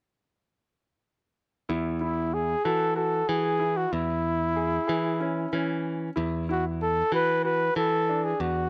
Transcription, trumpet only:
2.02 2.35 E4 medium
2.34 2.66 G#4 medium
2.65 2.96 A4 medium
2.97 3.30 A4 medium
3.28 3.79 G#4 medium
3.77 3.94 F#4 medium
3.92 5.84 E4 medium
6.51 6.65 F#4 medium
6.82 7.11 A4 medium
7.15 7.43 B4 medium
7.45 7.74 B4 medium
7.77 8.26 A4 medium
8.24 8.42 G#4 medium
8.41 8.69 F#4 medium

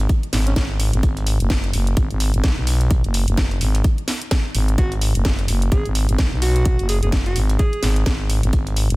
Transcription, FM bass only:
0.33 0.55 G#1 loud
0.93 1.02 G#1 loud
1.03 1.38 G#1 loud
1.40 1.72 F#1 medium
1.73 1.95 F#1 medium
1.97 2.08 G#1 loud
2.11 2.32 G#1 loud
2.34 2.42 G#1 loud
2.44 2.55 B1 loud
2.57 3.02 B1 medium
3.04 3.25 F#1 medium
3.28 3.59 F#1 medium
3.61 3.83 G#1 medium
4.55 4.77 G#1 medium
5.15 5.47 F#1 medium
5.48 5.70 F#1 medium
5.72 5.83 G#1 loud
5.85 6.07 G#1 medium
6.09 6.17 G#1 medium
6.32 6.77 B1 medium
6.79 7.00 F#1 medium
7.03 7.34 F#1 medium
7.36 7.58 G#1 medium
7.83 8.05 G#1 loud
8.43 8.51 G#1 loud
8.53 8.88 G#1 loud
8.90 8.96 F#1 medium

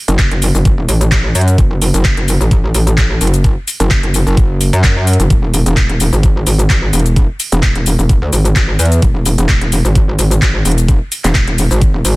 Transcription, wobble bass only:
0.08 0.29 F#1 loud
0.31 0.53 F#1 loud
0.55 0.76 F#1 loud
0.78 0.87 E1 loud
0.89 1.33 A1 loud
1.35 1.57 F#2 medium
1.58 1.92 F#1 loud
1.94 2.15 F#1 loud
2.17 2.39 F#1 loud
2.40 2.73 A1 loud
2.75 3.19 A1 loud
3.21 3.55 F#1 medium
3.80 4.01 F#1 medium
4.03 4.25 F#1 loud
4.27 4.71 F#1 medium
4.73 5.18 F#2 loud
5.20 5.29 F#1 loud
5.30 5.64 E1 medium
5.66 5.87 E1 loud
5.89 6.11 E1 loud
6.13 6.45 G#1 medium
6.47 6.91 G#1 loud
6.93 7.27 E1 loud
7.52 7.74 E1 loud
7.75 7.97 E1 loud
7.99 8.20 E1 loud
8.22 8.31 D2 loud
8.33 8.77 G#1 loud
8.79 9.01 E2 loud
9.02 9.36 E1 loud
9.38 9.60 E1 loud
9.61 9.83 E1 loud
9.85 10.17 G#1 loud
10.19 10.64 G#1 loud
10.65 10.99 E1 loud
11.24 11.46 E1 loud
11.47 11.69 E1 loud
11.71 11.92 G#1 loud
11.94 12.03 E1 loud
12.05 12.16 G#1 loud

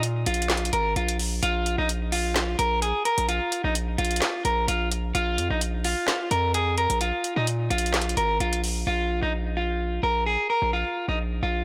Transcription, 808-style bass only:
0.00 0.25 A#2 loud
0.26 0.71 A#1 loud
0.73 0.95 G#1 loud
0.96 1.41 A#1 loud
1.43 1.77 A#1 loud
1.78 2.56 A#1 loud
2.59 2.93 A#1 loud
3.18 3.40 A#1 loud
3.64 3.97 A#1 loud
3.98 4.21 A#1 loud
4.45 4.67 A#1 loud
4.68 5.13 A#1 loud
5.15 5.40 A#1 loud
5.38 5.50 F2 loud
5.50 5.95 A#1 loud
6.31 6.87 F2 loud
6.90 7.12 A#1 loud
7.36 7.69 A#2 loud
7.71 8.15 A#1 loud
8.17 8.39 G#1 loud
8.40 8.85 A#1 loud
8.87 9.21 A#1 loud
9.22 10.00 A#1 loud
10.03 10.37 A#1 loud
10.62 10.84 A#1 loud
11.08 11.41 A#1 loud
11.43 11.64 A#1 loud

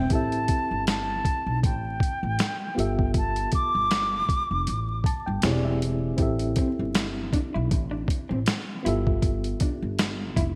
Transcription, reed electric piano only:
0.00 0.13 G#3 medium
0.00 0.09 C4 medium
0.00 0.12 D4 medium
0.00 0.12 E5 medium
0.09 2.72 C4 medium
0.09 2.73 E4 medium
0.09 2.73 G4 medium
0.13 2.74 A4 medium
0.13 2.75 E5 medium
2.75 5.38 B3 medium
2.75 5.38 F4 medium
2.75 5.39 G4 medium
2.79 5.40 A4 medium
2.79 5.40 E5 medium
5.06 5.25 A5 medium
5.26 5.42 G5 medium
5.43 6.16 C4 medium
5.43 6.17 E4 medium
5.43 6.18 G4 medium
5.43 6.20 G#4 medium
5.43 5.51 C#5 medium
5.43 5.63 G#5 medium
5.52 6.23 D5 medium
5.65 6.15 E5 medium
6.17 8.79 C4 medium
6.17 8.80 E4 medium
6.17 8.81 G4 medium
6.21 8.82 A4 medium
6.21 8.82 E5 medium
8.83 10.55 B3 medium
8.83 10.55 F4 medium
8.83 10.55 G4 medium
8.87 10.55 A4 medium
8.87 10.55 E5 medium

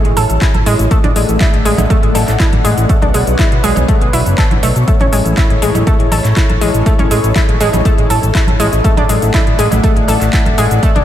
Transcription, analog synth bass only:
0.05 0.13 A1 medium
0.17 0.26 A1 loud
0.30 0.38 A1 medium
0.54 0.63 A1 medium
0.66 0.76 A1 loud
0.79 0.88 A1 loud
1.04 1.13 A1 medium
1.16 1.25 A1 loud
1.29 1.37 A1 medium
1.54 1.62 A1 medium
1.66 1.75 A1 loud
1.78 1.87 A1 loud
2.03 2.12 A1 medium
2.15 2.24 A1 loud
2.28 2.37 A1 medium
2.53 2.61 A1 medium
2.65 2.74 A1 loud
2.78 2.86 A1 medium
3.02 3.11 B1 medium
3.14 3.24 B1 loud
3.27 3.36 B1 medium
3.52 3.60 B1 medium
3.64 3.73 B1 loud
3.77 3.85 B1 medium
4.01 4.10 B1 medium
4.13 4.23 B1 loud
4.26 4.35 F#1 medium
4.51 4.60 A1 medium
4.63 4.72 B1 loud
4.76 4.84 B1 loud
5.01 5.09 A1 medium
5.13 5.22 A1 loud
5.25 5.34 A1 medium
5.50 5.59 A1 medium
5.62 5.71 A1 loud
5.75 5.84 A1 medium
6.00 6.08 A1 medium
6.12 6.21 A1 loud
6.25 6.33 A1 medium
6.49 6.58 A1 medium
6.61 6.71 A1 loud
6.74 6.83 A1 medium
6.99 7.08 A1 medium
7.11 7.20 A1 loud
7.24 7.32 A1 medium
7.49 7.57 A1 medium
7.61 7.70 A1 loud
7.73 7.82 A1 medium
7.98 8.07 A1 medium
8.10 8.19 A1 loud
8.23 8.32 A1 medium
8.48 8.56 A1 medium
8.60 8.69 A1 loud
8.73 8.81 A1 medium
8.97 9.06 A1 medium
9.09 9.19 A1 loud
9.22 9.31 A1 loud
9.47 9.56 A1 medium
9.59 9.68 A1 loud
9.72 9.80 A1 medium
9.97 10.05 A1 medium
10.08 10.18 A1 loud
10.21 10.30 A1 medium
10.46 10.55 A1 medium
10.58 10.67 A1 loud
10.71 10.80 A1 loud
10.96 11.04 B1 medium

